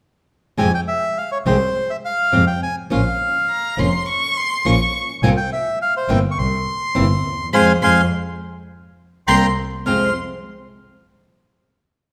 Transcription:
0.57 F2 C3 F3 G#3 C4 G4 G#5
0.74 G5
0.88 E5
1.18 F5
1.32 C#5
1.46 C2 C3 F3 G#3 C4 G4 C5
1.90 E5
2.05 F5
2.32 F2 C3 F3 G#3 C4 G4
2.47 G5
2.63 G#5
2.90 A#1 F3 A#3 C#4 F4 F5
3.49 A#5
3.77 F1 F3 A#3 C#4 F4 C6
4.09 C#6
4.37 C6
4.65 A#1 F3 A#3 C#4 F4 C#6
5.23 C2 C3 F3 A#3 C4 F4 G#5
5.37 G5
5.53 E5
5.82 F5
5.97 C5
6.08 G1 C3 E3 A#3 C4 E4 G5
6.31 C#6
6.37 C2 C6
6.95 G1 C3 E3 A#3 C4 E4
7.25 D#2
7.53 F2 F3 G#3 C4 C5 F5 G#5 C6
7.82 F2 F3 G#3 C4 C5 F5 G#5 C6
9.27 C2 G3 A#3 C4 G5 A#5 C6
9.86 F2 C3 F3 G#3 C4 F4 C6 F6

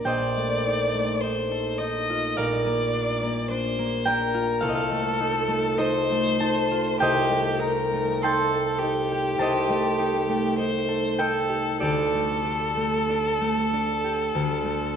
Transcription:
Already playing: A#3 D4 A#4 D5 F5 A#5
0.04 A#1 C5 D5 D#5 G5
0.37 A3
0.66 D#4
0.95 A3
1.20 D#4 C5
1.51 A4
1.78 D#4 D#5
2.10 F4
2.36 A#1 A#4 D5 F5
2.66 A#3
2.93 D4
3.23 A#3
3.50 D4 C5
3.79 A#3
4.05 D4 A#4 G5
4.34 F4
4.61 C2 A4 F5
4.69 D#5
4.75 F5
4.91 A3
5.20 D#4
5.48 A3
5.78 D#4 A4 C5 D#5
6.12 A3
6.40 D#4 A5
6.71 F4
7.00 C2 G4 C5 D#5 G5
7.31 A3
7.60 D#4 A#4
7.93 A3
8.22 D#4 A4 G5 A5 C6
8.55 A4
8.79 D#4 G4
9.12 G4
9.38 C2 C5 D#5 A5
9.70 A3
9.99 D#4
10.29 A3
10.59 D#4 C5
10.89 A4
11.19 D#4 A4 G5
11.49 G4
11.80 D2 G4 A4 D5
12.14 A3
12.45 D4
12.77 A3
13.09 D4
13.41 A3
13.73 D4
14.04 G4
14.35 D2
14.65 A3

